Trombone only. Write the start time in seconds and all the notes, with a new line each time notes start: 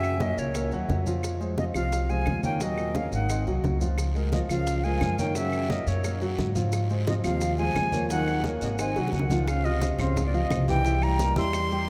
Already playing: C#3
0.21 A#2
0.39 A#2
1.58 C3
1.74 C3
2.10 F3
2.45 D#3
2.62 A#2
2.97 C#3
3.14 D#3
4.33 A#2
4.51 C#3
4.86 F3
5.20 D#3
5.38 C#3
5.72 A#2
5.89 A#2
7.07 C3
7.24 C3
7.60 F3
8.11 D#3
8.62 C3
8.79 D#3
9.14 D#3
9.49 C#3
9.65 C3
10.00 C#3
10.27 A#2
10.34 C3
10.70 E3
11.03 G3
11.37 G3